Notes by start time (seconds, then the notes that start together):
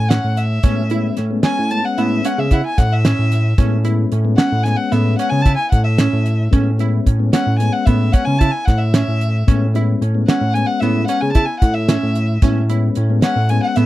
Already playing: A2 G#5
0.09 C#4 F#5, snare, closed hi-hat
0.24 A2
0.37 E5, closed hi-hat
0.63 A2 G#3 B3 C#4, kick, closed hi-hat
0.90 G#3 B3 C#4 E4, closed hi-hat
1.17 A2, snare, closed hi-hat
1.30 G#3 B3 C#4
1.43 C#4 G#5, snare, closed hi-hat
1.59 A2
1.71 G#3 B3 C#4 A5, closed hi-hat
1.85 F#5
1.98 A2 B3 E5, closed hi-hat
2.25 C#4 F#5, closed hi-hat
2.38 C#3 E5
2.51 E4 F#5, kick, closed hi-hat
2.66 G#5
2.78 A2 F#5, kick, snare, closed hi-hat
2.93 E5
3.05 C#4, snare, closed hi-hat
3.19 A2
3.32 snare, closed hi-hat
3.58 A2 G#3 B3 C#4, kick, closed hi-hat
3.84 G#3 B3 C#4 E4, closed hi-hat
4.12 A2, closed hi-hat
4.25 G#3 B3 C#4
4.37 C#4 F#5, snare, closed hi-hat
4.52 A2
4.63 G#3 B3 C#4 G#5, snare, closed hi-hat
4.77 F#5
4.92 A2 B3 E5, snare, closed hi-hat
5.18 C#4 F#5, closed hi-hat
5.30 C#3 G#5
5.42 E4 A5, kick, closed hi-hat
5.57 G#5
5.72 A2 F#5, kick, closed hi-hat
5.84 E5
5.98 C#4, snare, closed hi-hat
6.13 A2
6.26 closed hi-hat
6.51 A2 G#3 B3 C#4, kick, closed hi-hat
6.78 G#3 B3 C#4 E4, closed hi-hat
7.06 A2, kick, closed hi-hat
7.19 G#3 B3 C#4
7.33 C#4 F#5, snare, closed hi-hat
7.46 A2
7.59 G#3 B3 C#4 G#5, closed hi-hat
7.72 F#5
7.86 A2 B3 E5, kick, closed hi-hat
8.13 C#4 F#5, kick, closed hi-hat
8.25 C#3 G#5
8.39 E4 A5, kick, closed hi-hat
8.52 G#5
8.66 A2 F#5, kick, snare, closed hi-hat
8.78 E5
8.94 C#4, snare, closed hi-hat
9.08 A2
9.21 closed hi-hat
9.47 A2 G#3 B3 C#4, kick, closed hi-hat
9.74 G#3 B3 C#4 E4, closed hi-hat
10.01 A2, closed hi-hat
10.15 G#3 B3 C#4
10.28 C#4 F#5, snare, closed hi-hat
10.41 A2
10.54 G#3 B3 C#4 G#5, closed hi-hat
10.67 F#5
10.80 A2 B3 E5, closed hi-hat
11.07 C#4 F#5, closed hi-hat
11.21 C#3 G#5
11.33 E4 A5, kick, closed hi-hat
11.46 G#5
11.60 A2 F#5, kick, closed hi-hat
11.74 E5
11.89 C#4, snare, closed hi-hat
12.03 A2
12.15 closed hi-hat
12.42 A2 G#3 B3 C#4, kick, closed hi-hat
12.69 G#3 B3 C#4 E4, closed hi-hat
12.95 A2, closed hi-hat
13.10 G#3 B3 C#4
13.22 C#4 F#5, snare, closed hi-hat
13.36 A2
13.49 G#3 B3 C#4 G#5, closed hi-hat
13.63 F#5
13.76 A2 B3 E5, snare, closed hi-hat